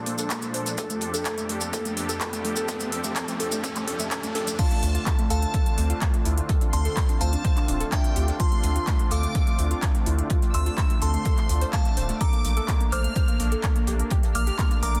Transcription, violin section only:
4.59 5.21 A5 loud
5.30 5.92 A5 loud
6.73 7.16 C6 medium
7.21 7.83 A5 loud
7.92 8.35 G5 medium
8.40 9.02 C6 loud
9.11 9.73 D6 loud
10.54 10.97 E6 medium
11.02 11.64 C6 loud
11.73 12.16 A5 medium
12.21 12.83 D6 loud
12.92 13.54 F6 loud
14.35 14.78 F6 medium
14.83 15.00 D6 loud

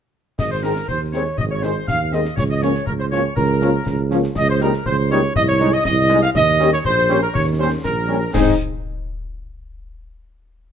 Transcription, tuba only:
0.39 0.80 G#1 medium
0.88 1.30 D#2 medium
1.38 1.79 G#1 medium
1.88 2.29 D#2 medium
2.37 2.79 C#2 medium
2.87 3.28 C#2 medium
3.37 3.78 C#2 medium
3.86 4.28 C#2 medium
4.36 4.78 C#2 medium
4.86 5.28 C#2 medium
5.36 5.77 C2 medium
5.86 6.27 C2 medium
6.35 6.77 D#2 medium
6.85 7.27 A#1 medium
7.35 7.76 D#2 medium
7.85 8.26 A#1 medium
8.35 8.55 G#2 medium

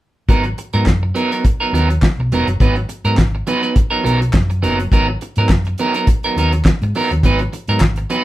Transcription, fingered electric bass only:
0.29 0.52 G#1 medium
0.74 0.84 G#2 medium
0.87 1.10 F#2 medium
1.73 1.97 D#2 medium
2.19 2.29 B1 medium
2.31 2.45 E1 medium
2.48 2.58 F#1 medium
2.60 2.84 G#1 medium
3.05 3.15 G#2 medium
3.18 3.41 G#1 medium
4.05 4.28 B1 medium
4.34 4.64 F#2 medium
4.62 4.86 F#1 medium
4.92 5.15 G#1 loud
5.37 5.50 G#2 medium
5.50 5.73 F#2 medium
6.36 6.60 D#2 medium
6.82 6.92 G#2 medium
7.11 7.21 D#2 medium
7.23 7.47 G#1 loud
7.68 7.79 G#2 medium
7.81 8.04 G#1 medium

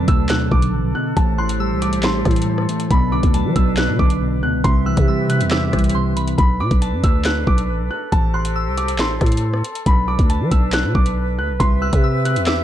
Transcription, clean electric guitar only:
0.00 0.50 D3 medium
0.00 0.94 F#3 medium
0.08 0.29 B2 medium
0.30 0.72 B2 loud
0.52 1.17 D3 medium
0.73 0.93 B2 medium
0.95 1.16 B2 medium
1.17 1.81 A2 loud
1.39 2.24 E3 medium
1.60 2.69 G3 medium
1.82 2.02 A2 medium
2.03 2.46 A2 loud
2.25 2.90 E3 medium
2.47 2.68 A2 medium
2.69 2.90 A2 medium
2.91 3.54 B2 medium
3.12 3.33 D3 medium
3.34 3.99 F#3 medium
3.56 3.76 B2 medium
3.77 4.20 B2 medium
3.99 4.64 D3 medium
4.21 4.42 B2 medium
4.43 4.65 B2 medium
4.65 5.29 C3 loud
4.86 5.72 E3 medium
5.08 6.17 G3 medium
5.30 5.50 C3 medium
5.51 5.94 C3 medium
5.73 6.38 E3 medium
5.95 6.15 C3 medium
6.16 6.38 C3 medium

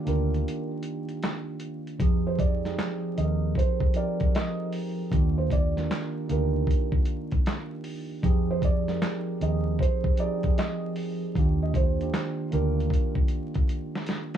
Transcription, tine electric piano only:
0.00 2.02 D#3 medium
0.00 0.05 A#3 medium
0.00 0.06 D4 medium
0.00 0.07 F4 medium
0.00 0.07 G4 loud
0.04 1.55 A#3 medium
0.04 1.55 D4 medium
0.04 1.55 D#4 medium
0.04 1.56 F4 medium
0.04 1.56 G4 medium
1.99 2.60 F3 medium
1.99 2.60 C4 medium
1.99 2.60 D#4 medium
1.99 2.61 G4 medium
1.99 2.61 G#4 loud
2.64 3.14 F3 medium
2.64 3.15 C4 medium
2.64 3.15 D#4 medium
2.64 3.16 G4 medium
2.64 3.16 G#4 medium
3.16 3.91 F3 medium
3.16 3.91 C4 medium
3.16 3.92 D#4 medium
3.16 3.92 G4 medium
3.16 3.26 A4 medium
3.25 3.96 A#4 medium
3.94 5.07 F3 medium
3.94 5.07 C4 medium
3.94 5.08 D#4 medium
3.94 5.08 G4 medium
3.94 5.08 A#4 loud
5.11 5.71 D#3 medium
5.11 5.72 A#3 medium
5.11 5.72 D4 medium
5.11 5.73 F4 medium
5.11 5.73 G4 loud
5.77 6.27 D#3 medium
5.77 6.27 A#3 medium
5.77 6.27 D4 medium
5.77 6.28 F4 medium
5.77 6.28 A#4 medium
6.28 7.78 A#3 medium
6.28 7.79 D4 medium
6.28 7.78 D#4 medium
6.28 7.79 F4 medium
6.28 7.80 G4 medium
8.22 8.83 F3 loud
8.22 8.83 C4 medium
8.22 8.84 D#4 medium
8.22 8.84 G4 medium
8.22 8.84 G#4 loud
8.87 9.38 F3 medium
8.87 9.38 C4 medium
8.87 9.38 D#4 medium
8.87 9.39 G4 medium
8.87 9.39 A#4 medium
9.40 10.15 F3 medium
9.40 10.16 C4 medium
9.40 10.16 D#4 medium
9.40 10.16 G4 medium
9.40 10.17 G#4 medium
10.18 11.30 F3 medium
10.18 11.31 C4 medium
10.18 11.31 D#4 medium
10.18 11.31 G4 medium
10.18 11.32 G#4 loud
11.36 11.96 D#3 medium
11.36 11.96 A#3 medium
11.36 11.96 D4 medium
11.36 11.97 F4 medium
11.36 11.97 G4 loud
11.99 12.50 D#3 medium
11.99 12.50 A#3 medium
11.99 12.50 D4 medium
11.99 12.51 F4 medium
11.99 12.51 G4 medium
12.51 14.02 A#3 medium
12.51 14.02 D4 medium
12.51 14.01 D#4 medium
12.51 14.02 F4 medium
12.51 14.03 G4 medium

